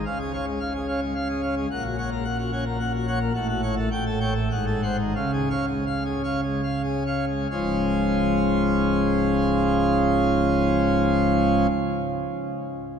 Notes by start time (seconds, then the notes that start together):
0.06 C#2 C#3 F5
0.20 G#4
0.33 C#5 F5
0.46 G#3
0.60 F5
0.75 G#4
0.88 C#4 C#5 F5
1.01 G#3
1.15 F5
1.29 G#4
1.43 C#5 F5
1.57 G#3
1.71 A#1 A#2 F#5
1.84 F#4
1.98 C#5 F#5
2.12 A#3
2.25 F#5
2.38 F#4
2.52 C#4 C#5 F#5
2.66 A#3
2.80 F#5
2.94 F#4
3.07 C#5 F#5
3.21 A#3
3.34 A1 A2 F#5
3.49 F#4
3.63 C#5 F#5
3.77 A3
3.91 A1 A2 G5
4.06 A4
4.20 C#5 G5
4.35 A3
4.51 G#1 G#2 F#5
4.67 A4
4.83 C5 F#5
4.99 D#3
5.15 C#2 C#3 F5
5.33 G#4
5.50 C#5 F5
5.68 G#3
5.87 F5
6.05 G#4
6.24 C#4 C#5 F5
6.43 G#3
6.63 F5
6.84 G#4
7.06 C#5 F5
7.28 G#3
7.50 C#1 C#2 G#2 F3 G#3 C#4 F4